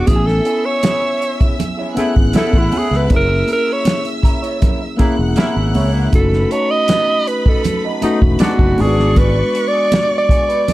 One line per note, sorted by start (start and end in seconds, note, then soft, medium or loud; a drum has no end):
0.00 0.10 D4 medium
0.07 0.39 A1 loud
0.07 1.13 B3 medium
0.07 1.13 C#4 medium
0.07 1.14 E4 medium
0.07 0.15 F#4 medium
0.07 0.28 G#4 medium
0.07 1.94 E5 medium
0.07 1.94 E6 medium
0.07 kick medium
0.07 closed hi-hat medium
0.07 muted conga medium
0.16 1.18 G#5 medium
0.27 0.67 A4 medium
0.27 snare soft
0.45 0.63 C#4 medium
0.45 0.64 E4 medium
0.45 0.64 G#4 medium
0.45 closed hi-hat medium
0.65 1.41 C#5 loud
0.83 1.01 C#4 medium
0.83 1.02 E4 medium
0.83 1.02 G#4 medium
0.83 snare loud
0.83 closed hi-hat loud
0.83 high conga medium
1.21 muted clean electric guitar stroke soft
1.21 closed hi-hat medium
1.40 1.55 C#4 soft
1.40 1.55 E4 medium
1.40 1.54 G#4 medium
1.40 kick medium
1.40 closed hi-hat soft
1.60 closed hi-hat medium
1.60 muted conga soft
1.60 low conga medium
1.77 1.94 C#4 medium
1.77 1.95 E4 medium
1.77 1.96 G#4 medium
1.95 2.14 A3 medium
1.95 2.75 B3 medium
1.95 2.76 C#4 medium
1.95 2.14 C#4 medium
1.95 2.77 E4 medium
1.95 2.14 E4 medium
1.95 2.77 G#4 loud
1.95 3.09 F#5 medium
1.95 3.09 F#6 medium
1.95 muted clean electric guitar stroke soft
1.95 muted fingered electric bass stroke soft
1.95 closed hi-hat medium
1.95 muted conga medium
2.16 2.32 G#1 medium
2.16 muted clean electric guitar stroke soft
2.16 kick medium
2.33 3.07 A3 medium
2.33 2.52 C#4 medium
2.33 3.07 C#4 medium
2.33 2.53 E4 medium
2.33 3.07 E4 medium
2.33 2.52 G#4 medium
2.33 2.60 A4 medium
2.33 muted fingered electric bass stroke soft
2.33 snare loud
2.33 closed hi-hat medium
2.33 high conga medium
2.53 2.69 A1 medium
2.53 muted clean electric guitar stroke soft
2.53 kick medium
2.59 2.79 E4 medium
2.72 2.87 C#4 medium
2.72 2.87 E4 medium
2.72 2.87 G#4 medium
2.72 open hi-hat medium
2.72 high conga medium
2.78 2.98 G#4 medium
2.91 3.07 C#2 medium
2.91 muted clean electric guitar stroke soft
2.91 snare soft
2.97 3.13 B4 medium
3.08 3.42 F#1 loud
3.08 4.16 A#3 medium
3.08 4.16 C#4 medium
3.08 3.28 C#4 medium
3.08 4.17 E4 medium
3.08 3.28 E4 medium
3.08 4.17 G#4 medium
3.08 3.28 A#4 medium
3.08 4.97 E5 medium
3.08 4.97 E6 medium
3.08 kick loud
3.08 closed hi-hat medium
3.08 muted conga soft
3.16 3.49 A#4 medium
3.29 muted clean electric guitar stroke soft
3.48 muted clean electric guitar stroke soft
3.48 closed hi-hat medium
3.48 muted conga soft
3.53 3.74 A#4 loud
3.67 3.82 C#4 soft
3.67 3.82 E4 soft
3.67 3.81 A#4 soft
3.73 4.08 C#5 medium
3.85 muted clean electric guitar stroke soft
3.85 snare loud
3.85 closed hi-hat loud
3.85 high conga medium
4.04 muted clean electric guitar stroke soft
4.04 closed hi-hat soft
4.23 4.38 C#4 medium
4.23 4.38 E4 medium
4.23 4.39 A#4 medium
4.23 kick medium
4.23 closed hi-hat medium
4.42 4.58 C#4 soft
4.42 4.57 E4 medium
4.42 4.57 C#5 medium
4.42 closed hi-hat soft
4.61 4.80 C#4 medium
4.61 4.80 E4 medium
4.61 4.80 A#4 medium
4.61 kick medium
4.61 closed hi-hat medium
4.61 muted conga soft
4.61 low conga medium
4.81 muted clean electric guitar stroke soft
4.97 5.78 A#3 medium
4.97 5.15 A#3 medium
4.97 5.79 C#4 medium
4.97 5.14 C#4 medium
4.97 5.16 C#4 medium
4.97 5.79 E4 medium
4.97 5.15 E4 medium
4.97 5.14 E4 medium
4.97 5.80 G#4 loud
4.97 5.15 A#4 medium
4.97 6.11 F#5 medium
4.97 6.12 F#6 medium
4.97 muted fingered electric bass stroke soft
4.97 kick medium
4.97 closed hi-hat medium
4.97 muted conga medium
5.19 5.35 E1 medium
5.19 muted clean electric guitar stroke soft
5.36 6.09 A#3 medium
5.36 5.55 C#4 medium
5.36 6.09 C#4 medium
5.36 6.09 E4 medium
5.36 5.56 E4 medium
5.36 5.54 A#4 medium
5.36 snare loud
5.36 closed hi-hat medium
5.36 high conga medium
5.55 5.72 G#1 medium
5.55 muted clean electric guitar stroke soft
5.74 6.07 C#2 medium
5.74 5.90 C#4 medium
5.74 5.90 E4 medium
5.74 5.90 C#5 medium
5.74 open hi-hat medium
5.74 high conga medium
6.12 6.45 F#1 loud
6.12 7.19 A3 medium
6.12 7.19 C#4 medium
6.12 7.20 D#4 medium
6.12 7.20 F#4 medium
6.12 6.53 A4 medium
6.12 8.75 B4 medium
6.12 8.75 B5 medium
6.12 kick loud
6.12 closed hi-hat medium
6.12 muted conga medium
6.33 snare soft
6.51 6.69 B3 medium
6.51 6.70 D#4 medium
6.51 6.70 A4 medium
6.51 6.72 C#5 loud
6.51 closed hi-hat medium
6.71 7.29 D#5 loud
6.88 7.07 B3 medium
6.88 7.08 D#4 medium
6.88 7.08 A4 medium
6.88 snare loud
6.88 closed hi-hat loud
6.88 high conga medium
7.27 7.50 B4 medium
7.27 muted clean electric guitar stroke soft
7.27 closed hi-hat medium
7.46 7.61 B3 soft
7.46 7.61 D#4 soft
7.46 7.61 A4 medium
7.46 7.85 A4 medium
7.46 kick loud
7.64 muted clean electric guitar stroke soft
7.64 closed hi-hat medium
7.64 muted conga soft
7.64 low conga medium
7.84 8.02 B3 medium
7.84 8.02 D#4 medium
7.84 8.02 A4 medium
8.01 8.78 A3 loud
8.01 8.19 A3 medium
8.01 8.19 B3 medium
8.01 8.79 C#4 medium
8.01 8.19 D#4 medium
8.01 8.79 D#4 medium
8.01 8.79 F#4 loud
8.01 muted clean electric guitar stroke soft
8.01 muted fingered electric bass stroke soft
8.01 closed hi-hat medium
8.01 muted conga medium
8.22 8.38 E1 medium
8.22 muted clean electric guitar stroke soft
8.22 kick medium
8.39 9.12 G#3 medium
8.39 9.12 B3 medium
8.39 8.59 B3 medium
8.39 9.13 D4 medium
8.39 8.59 D#4 medium
8.39 8.59 A4 medium
8.39 muted fingered electric bass stroke soft
8.39 snare loud
8.39 closed hi-hat medium
8.39 high conga medium
8.43 8.82 F#4 medium
8.59 8.75 F#1 loud
8.59 muted clean electric guitar stroke soft
8.59 kick medium
8.77 9.42 G#1 medium
8.77 9.99 G#3 medium
8.77 10.00 B3 medium
8.77 8.93 B3 medium
8.77 10.00 D4 medium
8.77 8.93 D4 medium
8.77 8.86 F4 medium
8.77 8.94 G#4 medium
8.77 9.19 G#4 medium
8.77 10.64 D5 medium
8.77 10.64 C#6 loud
8.77 open hi-hat medium
8.77 high conga medium
8.87 10.04 F#4 medium
8.99 muted clean electric guitar stroke soft
8.99 snare soft
9.16 9.35 B3 medium
9.16 9.35 D4 medium
9.16 9.35 G#4 medium
9.16 9.70 B4 medium
9.16 kick loud
9.16 closed hi-hat medium
9.16 muted conga medium
9.37 muted clean electric guitar stroke soft
9.54 muted clean electric guitar stroke soft
9.54 closed hi-hat medium
9.68 10.17 D5 loud
9.73 9.88 B3 soft
9.73 9.88 D4 medium
9.73 9.87 G#4 medium
9.92 muted clean electric guitar stroke soft
9.92 snare loud
9.92 closed hi-hat loud
9.92 high conga medium
10.11 muted clean electric guitar stroke soft
10.18 10.73 D5 medium
10.29 10.44 B3 medium
10.29 10.44 D4 medium
10.29 10.45 G#4 medium
10.29 kick medium
10.29 closed hi-hat medium
10.49 10.64 B3 medium
10.49 10.63 D4 medium
10.49 10.63 B4 medium
10.49 closed hi-hat medium
10.67 10.73 B3 medium
10.67 10.73 D4 medium
10.67 10.73 G#4 medium
10.67 10.73 D5 medium
10.67 10.73 D6 medium
10.67 closed hi-hat medium
10.67 muted conga medium
10.67 low conga medium